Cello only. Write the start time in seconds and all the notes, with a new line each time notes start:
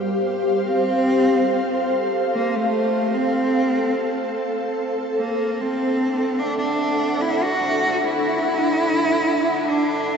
0.66 C4
2.35 A#3
2.56 A3
3.15 C4
5.17 A#3
5.61 C4
6.39 D4
6.58 D4
7.21 E4
7.42 F#4
8.04 E4
9.69 D4